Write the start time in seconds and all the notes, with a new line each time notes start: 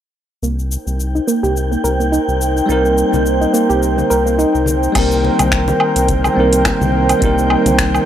0.42 C2 A#3 D#4 A#4 C5 G5 G6, cabasa
0.59 cabasa
0.72 cabasa
0.87 C2, cabasa
1.00 cabasa
1.15 D#4, cabasa
1.27 A#3, cabasa
1.43 C2 G4, cabasa
1.57 cabasa
1.72 A#3, cabasa
1.84 C2 A#4, cabasa
2.00 A#3, cabasa
2.12 D#4, cabasa
2.28 C2, cabasa
2.41 cabasa
2.57 cabasa
2.66 C2 G3 A#3 C4, cabasa
2.70 D#4 A#4
2.85 cabasa
2.98 cabasa
3.13 C2, high conga, cabasa
3.26 cabasa
3.41 D#4, cabasa
3.54 A#3, cabasa
3.69 C2 G4, cabasa
3.83 cabasa
3.98 A#3, high conga, cabasa
4.10 C2 A#4, cabasa
4.26 A#3, cabasa
4.39 D#4, cabasa
4.55 C2, cabasa
4.66 high conga, cabasa
4.83 cabasa
4.92 C2 D#3 G3 A#3 C4 A#4 C5 G5 G6, kick, closed hi-hat, crash, cabasa, low woodblock
4.97 D#4 A#4
5.12 cabasa
5.25 muted conga
5.39 C2, closed hi-hat, high conga, cabasa, low woodblock
5.52 finger snap, kick, closed hi-hat, cabasa
5.68 muted conga, cabasa
5.80 low woodblock
5.96 C2, closed hi-hat, cabasa
6.08 kick, closed hi-hat, high conga, cabasa
6.24 muted conga, cabasa, low woodblock
6.34 C2 G3 A#3 C4
6.39 D#4 A#4
6.53 closed hi-hat, cabasa
6.65 finger snap, kick, closed hi-hat, muted conga, cabasa, low woodblock
6.81 C2, high conga, cabasa
7.09 closed hi-hat, cabasa, low woodblock
7.19 C2 G3 A#3 C4, kick, closed hi-hat, muted conga, cabasa
7.24 D#4 A#4
7.38 cabasa
7.50 low woodblock
7.66 C2, closed hi-hat, muted conga, high conga, cabasa
7.79 finger snap, kick, closed hi-hat, cabasa
7.95 cabasa, low woodblock